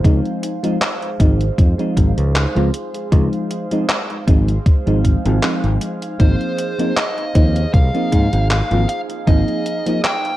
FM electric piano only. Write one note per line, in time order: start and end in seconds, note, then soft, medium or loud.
0.04 0.58 F3 medium
0.04 0.58 G#3 medium
0.04 0.59 C4 medium
0.04 0.59 D#4 medium
0.63 0.77 F3 medium
0.63 0.77 G#3 medium
0.63 0.78 C4 medium
0.63 0.78 D#4 medium
1.19 1.45 F3 medium
1.19 1.45 G#3 medium
1.19 1.45 C4 medium
1.19 1.45 D#4 medium
1.78 2.51 F3 medium
1.78 2.51 G#3 medium
1.78 2.51 C4 medium
1.78 2.51 D#4 medium
2.55 2.69 F3 medium
2.55 2.70 G#3 medium
2.55 2.70 C4 medium
2.55 2.70 F4 loud
3.12 3.66 F3 medium
3.12 3.66 G#3 medium
3.12 3.67 C4 medium
3.12 3.67 D#4 medium
3.71 3.85 F3 medium
3.71 3.85 G#3 medium
3.71 3.85 C4 medium
3.71 3.86 D#4 medium
4.27 4.52 F3 medium
4.27 4.52 G#3 medium
4.27 4.53 C4 medium
4.27 4.53 D#4 medium
4.86 5.21 F3 medium
4.86 5.21 G#3 medium
4.86 5.21 C4 medium
4.86 5.21 D#4 medium
5.25 5.40 F3 medium
5.25 5.40 G#3 medium
5.25 5.41 C4 medium
5.25 5.41 F4 medium
5.42 6.15 F3 medium
5.42 6.15 G#3 medium
5.42 6.16 C4 medium
5.42 6.16 D#4 medium
6.19 6.74 F3 medium
6.19 6.74 A#3 medium
6.19 6.74 C4 medium
6.19 6.74 D#4 medium
6.78 6.92 F3 medium
6.78 6.93 A#3 medium
6.78 6.93 C4 medium
6.78 6.93 D#4 medium
7.35 7.60 F3 medium
7.35 7.60 A#3 medium
7.35 7.60 C4 medium
7.35 7.61 D#4 medium
7.94 8.66 F3 medium
7.94 8.66 A#3 medium
7.94 8.67 C4 medium
7.94 8.67 D#4 medium
8.70 8.85 F3 medium
8.70 8.85 A#3 medium
8.70 8.85 C4 medium
8.70 8.85 F4 medium
9.27 9.81 F3 medium
9.27 9.82 A#3 medium
9.27 9.82 C4 medium
9.27 9.82 D#4 medium
9.86 10.00 F3 medium
9.86 10.00 A#3 medium
9.86 10.01 C4 medium
9.86 10.01 D#4 medium